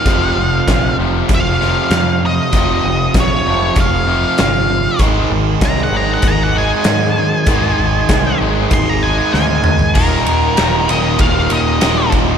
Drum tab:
CC |----------------|----------------|----------------|----------------|
RD |----------------|----------------|----------------|----------------|
HH |x---x---x---x---|x---x---x---x---|x---x---x---x---|x---x---x-------|
SD |----o-----o-o---|----o-------o---|----oo------o---|----o-------o---|
T2 |----------------|----------------|----------------|--------------o-|
FT |----------------|----------------|----------------|---------------o|
BD |o---o---o-------|o---o---o-------|o---o---o-------|o---o---o-------|

CC |x---------------|
RD |--x-x-x-x-x-x-x-|
HH |----------------|
SD |----o-------o---|
T2 |----------------|
FT |----------------|
BD |o-------o-----o-|